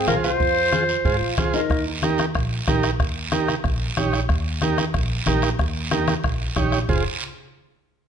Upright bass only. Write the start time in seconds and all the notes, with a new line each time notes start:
0.07 C2
0.40 F2
1.05 G#2
1.21 A#1
1.38 C2
1.53 D#2
1.70 D#2
2.35 A#1
2.68 A#1
3.00 D#2
3.64 A#1
3.97 A#1
4.29 D#2
4.94 A#1
5.26 A#1
5.59 D#2
6.24 A#1
6.56 A#1
6.89 F1